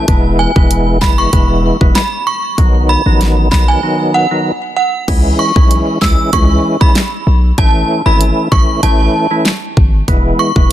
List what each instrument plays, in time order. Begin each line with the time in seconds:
0.08 808-style bass E1, tonewheel organ E3 G#3 B3 E4, kick, closed hi-hat
0.39 synth bell G#5
0.55 808-style bass E1, tonewheel organ E3 G#3 B3 E4, kick
0.71 closed hi-hat
1.01 808-style bass F#1, tonewheel organ E3 G#3 B3 E4, synth bell B5, kick, snare, clap
1.18 synth bell C#6
1.33 808-style bass E1, tonewheel organ E3 G#3 B3 E4, kick, closed hi-hat
1.81 808-style bass E1, tonewheel organ E3 G#3 B3 E4, kick
1.95 synth bell B5, snare, clap, closed hi-hat
2.27 synth bell C#6
2.58 808-style bass B1, tonewheel organ D#3 F#3 B3 D#4, kick, closed hi-hat
2.89 synth bell B5
3.06 808-style bass A1, tonewheel organ D#3 F#3 B3 D#4
3.21 snare, closed hi-hat
3.52 808-style bass B1, tonewheel organ D#3 F#3 B3 D#4, synth bell B5, kick, snare, clap
3.68 synth bell G#5
3.83 tonewheel organ D#3 F#3 B3 D#4
4.14 synth bell F#5
4.31 tonewheel organ D#3 F#3 B3 D#4
4.76 synth bell F#5
5.08 808-style bass C#2, tonewheel organ E3 G#3 C#4 E4, kick, closed hi-hat, crash
5.39 synth bell C#6
5.55 808-style bass B1, tonewheel organ E3 G#3 C#4 E4, kick
5.71 closed hi-hat
6.01 808-style bass C#2, tonewheel organ E3 G#3 C#4 E4, synth bell E6, kick, snare, clap
6.33 808-style bass C#2, tonewheel organ E3 G#3 C#4 E4, synth bell C#6, kick, closed hi-hat
6.81 tonewheel organ E3 G#3 C#4 E4, synth bell B5, kick
6.95 snare, clap, closed hi-hat
7.27 808-style bass B1
7.58 808-style bass A1, tonewheel organ E3 A3 C#4 E4, synth bell A5, kick, closed hi-hat
8.06 808-style bass G#1, tonewheel organ E3 A3 C#4 E4, synth bell B5
8.21 closed hi-hat
8.52 808-style bass A1, tonewheel organ E3 A3 C#4 E4, synth bell C#6, kick
8.83 808-style bass A1, tonewheel organ E3 A3 C#4 E4, synth bell A5, closed hi-hat
9.30 tonewheel organ E3 A3 C#4 E4
9.45 snare, clap, closed hi-hat
9.77 808-style bass G#1, kick
10.08 808-style bass E1, tonewheel organ E3 G#3 B3 E4, kick, closed hi-hat
10.39 synth bell C#6
10.56 808-style bass E1, tonewheel organ E3 G#3 B3 E4, kick